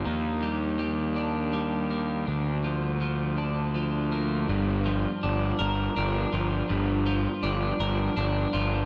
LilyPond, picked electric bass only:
\new Staff \with { instrumentName = "Picked electric bass" } { \clef bass \time 6/8 \key g \minor \tempo 4. = 54 ees,2. | d,2. | g,,4 g,,8 g,,8 g,,8 g,,8 | g,,4 g,,8 g,,8 g,,8 g,,8 | }